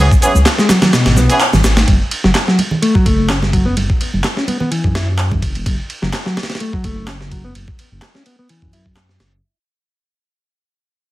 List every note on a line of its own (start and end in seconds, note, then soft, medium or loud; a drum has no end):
0.11 kick loud
0.11 shaker soft
0.22 0.32 E3 loud
0.22 0.32 B3 medium
0.22 0.32 C#4 medium
0.22 0.32 G#4 loud
0.22 ride medium
0.22 shaker medium
0.34 0.44 C#2 loud
0.34 high conga medium
0.34 shaker soft
0.46 snare loud
0.46 clap medium
0.46 ride medium
0.46 shaker soft
0.58 0.69 G#3 medium
0.58 snare medium
0.58 shaker soft
0.69 0.81 F#3 medium
0.69 snare loud
0.69 ride medium
0.69 high conga medium
0.69 shaker medium
0.82 0.91 F#3 loud
0.82 snare loud
0.82 ride medium
0.82 low conga medium
0.82 shaker soft
0.93 1.16 B2 medium
0.93 snare loud
0.93 ride medium
0.93 shaker soft
1.06 1.17 G#1 medium
1.06 snare loud
1.06 ride medium
1.06 shaker soft
1.16 1.28 B1 medium
1.16 1.29 B3 medium
1.16 snare medium
1.16 high conga medium
1.16 shaker medium
1.30 1.38 E3 medium
1.30 1.38 B3 medium
1.30 1.38 C#4 medium
1.30 1.38 G#4 loud
1.30 ride medium
1.30 shaker soft
1.40 clap loud
1.40 ride medium
1.40 shaker soft
1.53 1.62 G#1 medium
1.53 snare soft
1.53 high conga medium
1.53 low conga medium
1.53 shaker soft
1.64 1.84 G#1 medium
1.64 snare loud
1.64 ride medium
1.64 shaker medium
1.77 snare loud
1.77 ride medium
1.77 shaker soft
1.88 1.98 F#1 loud
1.88 kick loud
1.88 ride medium
1.88 high conga medium
2.11 ride medium
2.24 2.33 F#1 medium
2.24 2.29 F#3 medium
2.24 snare soft
2.24 high conga medium
2.35 snare loud
2.35 clap medium
2.35 ride medium
2.48 2.58 F#3 medium
2.48 snare medium
2.59 ride medium
2.59 high conga medium
2.71 low conga medium
2.82 2.94 A3 medium
2.82 ride medium
2.95 3.05 F#3 loud
2.95 kick medium
3.06 3.74 F#1 medium
3.06 3.28 A3 medium
3.06 kick medium
3.06 ride medium
3.06 high conga medium
3.29 3.35 C#4 loud
3.29 snare loud
3.29 clap loud
3.29 ride medium
3.43 snare soft
3.43 high conga medium
3.53 3.65 F#3 medium
3.53 kick loud
3.53 ride medium
3.65 3.74 B3 medium
3.77 3.87 F#1 medium
3.77 ride medium
3.77 high conga loud
3.90 kick loud
4.01 ride medium
4.13 4.22 F#1 loud
4.13 high conga medium
4.24 snare loud
4.24 clap loud
4.24 ride medium
4.37 4.47 C#4 medium
4.37 snare medium
4.48 4.59 B3 medium
4.48 ride medium
4.48 high conga medium
4.60 4.69 B3 medium
4.60 low conga medium
4.71 4.94 E3 medium
4.71 ride medium
4.84 5.39 F#2 medium
4.84 kick medium
4.95 5.07 E4 medium
4.95 snare loud
4.95 ride medium
4.95 high conga medium
5.19 clap loud
5.19 ride medium
5.32 kick medium
5.32 high conga medium
5.32 low conga medium
5.42 5.53 F#1 medium
5.42 kick medium
5.42 ride medium
5.55 5.64 E1 medium
5.55 ride soft
5.66 5.76 F#1 medium
5.66 kick loud
5.66 ride medium
5.90 ride medium
6.02 6.11 F#1 loud
6.02 6.07 F#3 medium
6.02 snare soft
6.13 snare loud
6.13 clap loud
6.13 ride medium
6.26 6.36 F#3 medium
6.26 snare soft
6.37 snare medium
6.37 ride medium
6.43 snare medium
6.43 ride medium
6.50 snare medium
6.50 ride medium
6.55 snare medium
6.55 ride medium
6.60 6.72 A3 medium
6.60 ride medium
6.73 6.84 F#3 loud
6.73 kick medium
6.84 7.52 F#1 medium
6.84 7.07 A3 medium
6.84 kick medium
6.84 ride medium
7.08 7.14 C#4 medium
7.08 snare loud
7.08 clap loud
7.08 ride medium
7.21 snare soft
7.31 7.43 F#3 medium
7.31 kick medium
7.31 ride medium
7.44 7.53 B3 medium
7.55 7.66 F#1 medium
7.55 ride medium
7.68 kick medium
7.79 ride medium
7.92 8.00 F#1 medium
8.02 snare loud
8.02 clap loud
8.02 ride medium
8.15 8.25 C#4 medium
8.15 snare medium
8.26 8.37 B3 medium
8.26 ride medium
8.39 8.47 B3 medium
8.49 8.72 E3 medium
8.49 ride medium
8.62 9.17 F#2 medium
8.62 kick medium
8.73 8.85 E4 medium
8.73 ride medium
8.86 kick medium
8.96 snare medium
8.96 clap loud
8.96 ride medium
9.09 snare soft
9.20 9.40 F#1 medium
9.20 snare medium
9.20 ride medium